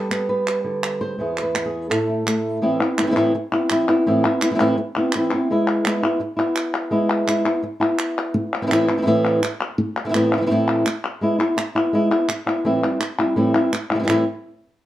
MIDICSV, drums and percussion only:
0, 0, Header, 1, 2, 480
1, 0, Start_track
1, 0, Key_signature, 0, "minor"
1, 0, Tempo, 358209
1, 1597, Time_signature, 4, 2, 24, 8
1, 19907, End_track
2, 0, Start_track
2, 0, Title_t, "Drums"
2, 157, Note_on_c, 9, 39, 73
2, 291, Note_off_c, 9, 39, 0
2, 633, Note_on_c, 9, 39, 63
2, 767, Note_off_c, 9, 39, 0
2, 1117, Note_on_c, 9, 39, 81
2, 1251, Note_off_c, 9, 39, 0
2, 1839, Note_on_c, 9, 39, 63
2, 1973, Note_off_c, 9, 39, 0
2, 2082, Note_on_c, 9, 39, 69
2, 2216, Note_off_c, 9, 39, 0
2, 2563, Note_on_c, 9, 39, 64
2, 2697, Note_off_c, 9, 39, 0
2, 3044, Note_on_c, 9, 39, 91
2, 3178, Note_off_c, 9, 39, 0
2, 3995, Note_on_c, 9, 39, 87
2, 4129, Note_off_c, 9, 39, 0
2, 4955, Note_on_c, 9, 39, 95
2, 5089, Note_off_c, 9, 39, 0
2, 5917, Note_on_c, 9, 39, 89
2, 6051, Note_off_c, 9, 39, 0
2, 6865, Note_on_c, 9, 39, 99
2, 6999, Note_off_c, 9, 39, 0
2, 7843, Note_on_c, 9, 39, 85
2, 7977, Note_off_c, 9, 39, 0
2, 8791, Note_on_c, 9, 39, 92
2, 8925, Note_off_c, 9, 39, 0
2, 9754, Note_on_c, 9, 39, 80
2, 9888, Note_off_c, 9, 39, 0
2, 10702, Note_on_c, 9, 39, 100
2, 10836, Note_off_c, 9, 39, 0
2, 11679, Note_on_c, 9, 39, 87
2, 11813, Note_off_c, 9, 39, 0
2, 12640, Note_on_c, 9, 39, 103
2, 12774, Note_off_c, 9, 39, 0
2, 12874, Note_on_c, 9, 39, 58
2, 13008, Note_off_c, 9, 39, 0
2, 13594, Note_on_c, 9, 39, 95
2, 13728, Note_off_c, 9, 39, 0
2, 14556, Note_on_c, 9, 39, 95
2, 14690, Note_off_c, 9, 39, 0
2, 15517, Note_on_c, 9, 39, 85
2, 15651, Note_off_c, 9, 39, 0
2, 16469, Note_on_c, 9, 39, 93
2, 16603, Note_off_c, 9, 39, 0
2, 17432, Note_on_c, 9, 39, 85
2, 17566, Note_off_c, 9, 39, 0
2, 18402, Note_on_c, 9, 39, 95
2, 18536, Note_off_c, 9, 39, 0
2, 18868, Note_on_c, 9, 39, 89
2, 19002, Note_off_c, 9, 39, 0
2, 19907, End_track
0, 0, End_of_file